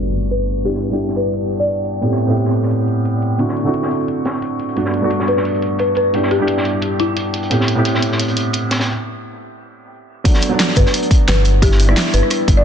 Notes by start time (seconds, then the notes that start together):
Already playing: G2 A3 B3 D4 F#4, impact
0.06 closed hi-hat
0.14 closed hi-hat
0.31 B4, closed hi-hat
0.48 closed hi-hat
0.64 G2 B3 D4 E4 G4, closed hi-hat
0.74 snare
0.82 closed hi-hat
0.89 G2 B3 D4 E4 G4
1.00 closed hi-hat
1.08 snare
1.16 B4, closed hi-hat
1.34 closed hi-hat
1.51 closed hi-hat
1.60 D5
1.68 closed hi-hat
1.85 closed hi-hat
1.94 closed hi-hat
2.01 A2 B3 C4 E4 G4, closed hi-hat
2.12 snare
2.20 closed hi-hat
2.27 A2 B3 C4 E4 G4
2.37 closed hi-hat
2.45 snare
2.53 closed hi-hat
2.63 snare
2.71 closed hi-hat
2.80 closed hi-hat
2.88 closed hi-hat
3.05 closed hi-hat
3.22 closed hi-hat
3.38 D3 A3 C4 E4 F#4, closed hi-hat
3.49 snare
3.56 closed hi-hat
3.64 D3 A3 C4 E4 F#4
3.74 closed hi-hat
3.83 snare
3.91 closed hi-hat
4.01 closed hi-hat
4.08 closed hi-hat
4.25 snare, closed hi-hat
4.42 closed hi-hat
4.60 closed hi-hat
4.69 closed hi-hat
4.76 G2 A3 B3 D4 F#4, closed hi-hat
4.85 snare
4.94 closed hi-hat
5.01 G2 A3 B3 D4 F#4
5.10 closed hi-hat
5.20 snare
5.28 B4, closed hi-hat
5.37 snare
5.45 closed hi-hat
5.55 closed hi-hat
5.62 closed hi-hat
5.79 B4, closed hi-hat
5.95 closed hi-hat
5.97 B4, closed hi-hat
6.13 G2 B3 D4 E4 G4, closed hi-hat
6.23 snare
6.31 G4, closed hi-hat
6.38 G2 B3 D4 E4 G4
6.47 closed hi-hat
6.58 snare
6.65 closed hi-hat
6.82 closed hi-hat
6.99 E4, closed hi-hat
7.17 closed hi-hat
7.34 closed hi-hat
7.43 closed hi-hat
7.50 A2 B3 C4 E4 G4, closed hi-hat
7.61 snare
7.68 closed hi-hat
7.75 A2 B3 C4 E4 G4
7.85 closed hi-hat
7.95 snare
8.02 closed hi-hat
8.12 snare
8.19 closed hi-hat
8.28 closed hi-hat
8.37 closed hi-hat
8.53 closed hi-hat
8.71 snare, closed hi-hat
8.80 snare, closed hi-hat
10.24 F#3 A3 B3 D4, kick, closed hi-hat
10.34 snare
10.42 closed hi-hat
10.49 F#3 A3 B3 D4
10.59 snare, closed hi-hat
10.68 snare
10.76 G1 B4, kick, closed hi-hat
10.86 snare
10.94 closed hi-hat
11.03 closed hi-hat
11.11 kick, closed hi-hat
11.28 G1 B4, snare, closed hi-hat
11.45 closed hi-hat
11.61 G1 G3 B3 D4 E4 G4, kick, closed hi-hat
11.72 snare
11.80 closed hi-hat
11.87 G3 B3 D4 E4, cross-stick
11.96 snare, closed hi-hat
12.06 snare
12.14 G1 B4, closed hi-hat
12.23 cross-stick
12.30 cross-stick, closed hi-hat
12.48 G1, kick, closed hi-hat
12.57 D5